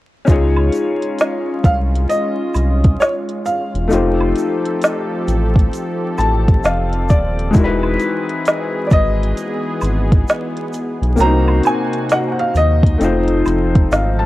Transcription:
0.25 0.70 C#2 loud
0.25 3.86 C#4 medium
0.25 3.88 C#4 medium
0.25 3.87 D#4 medium
0.25 3.87 F4 medium
0.25 3.88 F4 medium
0.25 kick loud
0.25 shaker medium
0.29 3.88 G#3 medium
0.29 3.88 G#4 medium
0.29 3.89 C#5 medium
0.29 closed hi-hat medium
0.56 high woodblock medium
0.72 closed hi-hat medium
0.72 shaker soft
1.02 closed hi-hat medium
1.18 snare loud
1.18 closed hi-hat medium
1.18 shaker medium
1.64 2.06 C2 loud
1.64 1.75 F5 loud
1.64 kick loud
1.64 closed hi-hat medium
1.64 shaker soft
1.96 closed hi-hat medium
2.09 3.03 D#5 medium
2.09 closed hi-hat medium
2.09 shaker medium
2.54 2.97 C2 medium
2.54 closed hi-hat medium
2.54 high woodblock medium
2.54 shaker soft
2.84 kick loud
2.84 closed hi-hat medium
3.00 3.10 C#5 medium
3.00 snare loud
3.00 closed hi-hat medium
3.00 shaker medium
3.29 closed hi-hat soft
3.46 4.33 F5 medium
3.46 closed hi-hat medium
3.46 shaker medium
3.74 3.90 E1 medium
3.74 closed hi-hat soft
3.88 7.51 F3 medium
3.88 7.49 A3 medium
3.88 9.32 C4 medium
3.88 7.50 D#4 medium
3.88 7.51 F4 medium
3.88 7.51 G4 medium
3.88 7.50 A4 medium
3.88 shaker medium
3.92 4.34 F1 loud
3.92 7.51 G4 medium
3.92 7.52 C5 medium
3.92 closed hi-hat medium
4.20 high woodblock medium
4.36 closed hi-hat medium
4.36 shaker soft
4.65 closed hi-hat medium
4.82 snare loud
4.82 closed hi-hat medium
4.82 shaker medium
5.28 5.70 A1 medium
5.28 closed hi-hat medium
5.28 shaker soft
5.56 kick medium
5.56 closed hi-hat medium
5.73 closed hi-hat medium
5.73 shaker medium
6.18 6.61 A1 medium
6.18 6.61 A5 medium
6.18 closed hi-hat medium
6.18 high woodblock medium
6.18 shaker soft
6.48 kick loud
6.48 closed hi-hat medium
6.64 7.12 F1 loud
6.64 7.06 F5 medium
6.64 snare loud
6.64 closed hi-hat medium
6.64 shaker medium
6.93 closed hi-hat soft
7.09 7.52 D#1 medium
7.09 7.52 D5 medium
7.09 kick medium
7.09 closed hi-hat medium
7.09 shaker medium
7.39 closed hi-hat soft
7.51 11.12 G#3 medium
7.51 11.13 D#4 medium
7.51 11.14 E4 medium
7.51 shaker medium
7.55 7.97 E1 loud
7.55 11.15 E3 medium
7.55 11.15 F#4 medium
7.55 11.15 G#4 medium
7.55 7.64 A#4 medium
7.55 kick loud
7.55 closed hi-hat medium
7.64 11.19 B4 medium
7.83 high woodblock medium
7.99 closed hi-hat medium
7.99 shaker medium
8.29 closed hi-hat medium
8.45 snare loud
8.45 closed hi-hat medium
8.45 shaker medium
8.87 8.92 D5 medium
8.87 shaker medium
8.91 9.34 G#1 medium
8.91 11.15 D#5 loud
8.91 kick loud
8.91 closed hi-hat medium
9.23 closed hi-hat medium
9.36 11.16 B3 medium
9.36 closed hi-hat medium
9.36 shaker medium
9.81 10.25 G#1 medium
9.81 closed hi-hat medium
9.81 high woodblock medium
9.81 shaker soft
10.12 kick loud
10.12 closed hi-hat medium
10.28 snare loud
10.28 closed hi-hat medium
10.28 shaker medium
10.57 closed hi-hat soft
10.73 closed hi-hat medium
10.73 shaker medium
11.02 11.18 B1 loud
11.02 closed hi-hat soft
11.16 11.61 C2 loud
11.16 12.98 C3 medium
11.16 12.95 A#3 medium
11.16 12.98 A#3 medium
11.16 12.96 C4 medium
11.16 11.27 C#4 soft
11.16 14.26 D#4 medium
11.16 12.98 F#4 medium
11.16 shaker medium
11.20 12.98 F#4 medium
11.20 12.98 C5 medium
11.20 11.62 A#5 medium
11.20 closed hi-hat medium
11.25 12.99 D#4 medium
11.48 high woodblock medium
11.63 12.08 G#5 loud
11.63 closed hi-hat medium
11.63 high woodblock medium
11.63 shaker medium
11.93 closed hi-hat medium
12.09 12.17 F#5 medium
12.09 snare loud
12.09 closed hi-hat medium
12.09 shaker medium
12.32 12.38 F#5 medium
12.39 12.55 F5 medium
12.39 closed hi-hat soft
12.55 12.97 D#2 medium
12.55 14.26 D#5 loud
12.55 closed hi-hat medium
12.55 shaker soft
12.83 kick medium
12.83 closed hi-hat medium
12.98 13.43 F1 loud
12.98 14.26 F3 medium
12.98 14.26 A3 medium
12.98 14.26 C4 medium
12.98 14.26 D#4 medium
12.98 14.26 A4 medium
12.98 closed hi-hat medium
12.98 shaker medium
13.03 14.26 F4 medium
13.03 14.26 C5 medium
13.28 closed hi-hat soft
13.46 13.88 F1 medium
13.46 closed hi-hat medium
13.46 high woodblock medium
13.46 shaker soft
13.75 kick loud
13.75 closed hi-hat medium
13.91 14.26 G#1 medium
13.91 14.18 F5 medium
13.91 snare loud
13.91 closed hi-hat medium
13.91 shaker medium
14.19 14.26 A5 medium

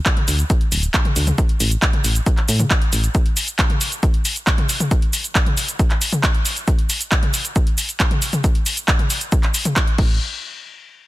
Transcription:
0.06 kick loud
0.06 clap loud
0.06 closed hi-hat medium
0.06 shaker soft
0.17 closed hi-hat medium
0.17 mid tom medium
0.28 0.44 D2 medium
0.28 open hi-hat loud
0.28 shaker medium
0.39 closed hi-hat soft
0.39 shaker soft
0.50 kick loud
0.50 closed hi-hat medium
0.50 shaker soft
0.61 closed hi-hat soft
0.72 0.88 D1 medium
0.72 open hi-hat loud
0.72 shaker medium
0.83 closed hi-hat medium
0.83 shaker soft
0.94 kick loud
0.94 clap loud
0.94 closed hi-hat medium
0.94 shaker soft
1.05 closed hi-hat medium
1.05 mid tom medium
1.16 1.32 D2 medium
1.16 open hi-hat loud
1.16 shaker medium
1.27 closed hi-hat soft
1.27 mid tom medium
1.27 shaker soft
1.38 kick loud
1.38 closed hi-hat medium
1.38 shaker soft
1.49 closed hi-hat soft
1.60 1.76 A1 loud
1.60 open hi-hat loud
1.60 shaker medium
1.71 closed hi-hat medium
1.71 shaker soft
1.82 kick loud
1.82 clap loud
1.82 closed hi-hat medium
1.82 shaker soft
1.93 closed hi-hat soft
1.93 mid tom medium
2.04 2.20 A1 medium
2.04 open hi-hat loud
2.04 shaker medium
2.15 closed hi-hat soft
2.15 shaker soft
2.26 kick loud
2.26 closed hi-hat medium
2.26 shaker soft
2.37 clap soft
2.37 closed hi-hat soft
2.48 2.64 A2 medium
2.48 open hi-hat loud
2.48 shaker medium
2.60 closed hi-hat soft
2.60 mid tom medium
2.60 shaker soft
2.71 kick loud
2.71 clap loud
2.71 closed hi-hat medium
2.71 shaker soft
2.82 closed hi-hat medium
2.93 3.08 A1 medium
2.93 open hi-hat loud
2.93 shaker medium
3.04 closed hi-hat soft
3.04 shaker soft
3.15 kick loud
3.15 closed hi-hat medium
3.15 shaker soft
3.26 closed hi-hat soft
3.37 open hi-hat loud
3.37 shaker medium
3.48 closed hi-hat soft
3.48 shaker soft
3.59 kick loud
3.59 clap loud
3.59 closed hi-hat medium
3.59 shaker soft
3.70 closed hi-hat medium
3.70 mid tom medium
3.81 open hi-hat loud
3.81 shaker medium
3.92 closed hi-hat soft
3.92 shaker soft
4.03 kick loud
4.03 closed hi-hat medium
4.03 shaker soft
4.14 closed hi-hat medium
4.25 open hi-hat loud
4.25 shaker medium
4.36 closed hi-hat soft
4.36 shaker soft
4.47 kick loud
4.47 clap loud
4.47 closed hi-hat medium
4.47 shaker soft
4.58 closed hi-hat medium
4.58 mid tom medium
4.69 open hi-hat loud
4.69 shaker medium
4.80 closed hi-hat soft
4.80 mid tom medium
4.80 shaker soft
4.91 kick loud
4.91 closed hi-hat medium
4.91 shaker soft
5.02 closed hi-hat medium
5.13 open hi-hat loud
5.13 shaker medium
5.24 closed hi-hat medium
5.24 shaker soft
5.35 kick loud
5.35 clap loud
5.35 closed hi-hat medium
5.35 shaker soft
5.46 closed hi-hat medium
5.46 mid tom medium
5.57 open hi-hat loud
5.57 shaker medium
5.68 closed hi-hat medium
5.68 shaker soft
5.79 kick loud
5.79 closed hi-hat medium
5.79 shaker soft
5.90 clap soft
5.90 closed hi-hat medium
6.02 open hi-hat loud
6.02 shaker medium
6.13 closed hi-hat medium
6.13 mid tom medium
6.13 shaker soft
6.23 kick loud
6.23 clap loud
6.23 closed hi-hat medium
6.23 shaker soft
6.34 closed hi-hat medium
6.45 open hi-hat loud
6.45 shaker medium
6.57 closed hi-hat medium
6.57 shaker soft
6.68 kick loud
6.68 closed hi-hat medium
6.68 shaker soft
6.79 closed hi-hat medium
6.90 open hi-hat loud
6.90 shaker medium
7.01 closed hi-hat medium
7.01 shaker soft
7.12 kick loud
7.12 clap loud
7.12 closed hi-hat medium
7.12 shaker soft
7.23 closed hi-hat medium
7.23 mid tom medium
7.34 open hi-hat loud
7.34 shaker medium
7.45 closed hi-hat medium
7.45 shaker soft
7.56 kick loud
7.56 closed hi-hat medium
7.56 shaker soft
7.67 closed hi-hat medium
7.78 open hi-hat loud
7.78 shaker medium
7.89 closed hi-hat medium
7.89 shaker soft
8.00 kick loud
8.00 clap loud
8.00 closed hi-hat medium
8.00 shaker soft
8.11 closed hi-hat medium
8.11 mid tom medium
8.22 open hi-hat medium
8.22 shaker medium
8.33 closed hi-hat medium
8.33 mid tom medium
8.33 shaker soft
8.44 kick loud
8.44 closed hi-hat loud
8.44 shaker soft
8.55 closed hi-hat medium
8.66 open hi-hat loud
8.66 shaker medium
8.77 closed hi-hat medium
8.77 shaker soft
8.88 kick loud
8.88 clap loud
8.88 closed hi-hat loud
8.88 shaker soft
8.99 closed hi-hat medium
8.99 mid tom medium
9.10 open hi-hat loud
9.10 shaker medium
9.21 closed hi-hat medium
9.21 shaker soft
9.32 kick loud
9.32 closed hi-hat medium
9.32 shaker soft
9.43 clap soft
9.43 closed hi-hat medium
9.54 open hi-hat loud
9.54 shaker medium
9.65 closed hi-hat medium
9.65 mid tom medium
9.65 shaker soft
9.76 kick loud
9.76 clap loud
9.76 closed hi-hat medium
9.76 shaker soft
9.87 closed hi-hat medium
9.98 10.19 A1 loud
9.98 kick loud
9.98 crash medium

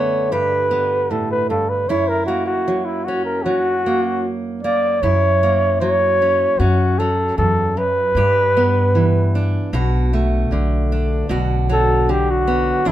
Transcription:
0.00 0.28 F#2 medium
0.00 2.67 D3 soft
0.00 0.29 A3 soft
0.00 0.28 B3 soft
0.00 0.32 D4 medium
0.00 0.34 C#5 medium
0.32 1.49 G2 medium
0.32 1.85 G4 soft
0.32 1.12 B4 medium
0.71 1.84 B3 soft
1.10 1.50 A2 soft
1.10 1.30 A4 medium
1.31 1.49 B4 medium
1.50 1.89 G2 soft
1.50 1.71 A4 medium
1.69 1.90 B4 medium
1.89 4.99 F#2 medium
1.89 4.99 E4 medium
1.89 2.10 C#5 medium
2.08 2.26 A#4 medium
2.26 3.85 A#3 soft
2.26 2.46 F#4 medium
2.46 2.86 F#4 medium
2.68 3.45 F#3 soft
2.85 3.06 E4 medium
3.05 4.25 C#4 soft
3.05 3.24 F#4 medium
3.25 3.45 A#4 medium
3.44 4.98 F#3 soft
3.44 4.36 F#4 medium
3.86 4.63 A#3 soft
4.63 4.99 A#3 soft
4.63 5.03 D5 medium
5.02 6.43 F#2 medium
5.02 6.55 F#2 medium
5.02 6.56 E4 medium
5.02 5.80 C#5 medium
5.43 6.56 A#3 soft
5.80 6.55 F#3 soft
5.80 6.61 C#5 medium
6.22 6.56 C#4 soft
6.59 7.30 F#2 medium
6.59 7.37 F#2 medium
6.59 8.13 C#4 soft
6.59 7.00 F#4 medium
6.98 8.17 F#3 soft
6.98 7.37 A4 medium
7.38 7.77 E2 soft
7.38 8.08 F#2 medium
7.38 7.79 A4 medium
7.77 8.16 F#2 soft
7.77 9.35 B4 medium
8.15 9.56 G2 medium
8.15 9.69 G2 medium
8.15 9.69 G4 medium
8.57 10.13 B3 soft
8.95 9.69 E3 soft
9.35 10.92 D4 soft
9.73 10.43 B1 medium
9.73 10.52 B2 medium
9.73 11.26 F#4 medium
10.13 11.26 A3 soft
10.51 11.21 B1 medium
10.51 12.08 D3 medium
10.92 12.47 D4 soft
11.29 12.70 B1 medium
11.29 12.08 B2 medium
11.29 12.82 F#4 medium
11.69 12.87 F#3 soft
11.69 12.12 A4 medium
12.09 12.92 D3 medium
12.09 12.32 G4 medium
12.30 12.89 F#4 medium
12.47 12.82 B3 soft
12.85 12.92 E2 medium
12.85 12.92 D4 medium
12.85 12.92 E4 medium

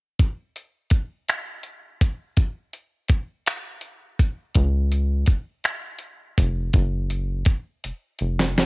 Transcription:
0.19 kick loud
0.19 closed hi-hat soft
0.56 closed hi-hat soft
0.90 kick medium
0.90 closed hi-hat medium
1.29 finger snap medium
1.29 closed hi-hat medium
1.63 closed hi-hat soft
2.01 kick medium
2.01 closed hi-hat medium
2.37 kick loud
2.37 closed hi-hat soft
2.73 closed hi-hat soft
3.08 kick medium
3.08 closed hi-hat medium
3.46 finger snap medium
3.46 closed hi-hat medium
3.81 closed hi-hat soft
4.19 kick medium
4.19 closed hi-hat medium
4.55 5.25 C#2 medium
4.55 kick loud
4.55 closed hi-hat medium
4.92 closed hi-hat soft
5.26 5.36 F1 soft
5.26 kick medium
5.26 closed hi-hat medium
5.64 finger snap medium
5.64 closed hi-hat medium
5.99 closed hi-hat soft
6.38 6.71 F1 medium
6.38 kick medium
6.38 closed hi-hat medium
6.73 7.43 F#1 medium
6.73 kick loud
6.73 closed hi-hat medium
7.10 closed hi-hat soft
7.45 7.54 F1 soft
7.45 kick medium
7.45 closed hi-hat medium
7.84 7.92 F1 soft
7.84 closed hi-hat medium
8.19 8.66 F1 medium
8.19 closed hi-hat soft
8.39 snare medium
8.58 snare medium
8.58 closed hi-hat medium

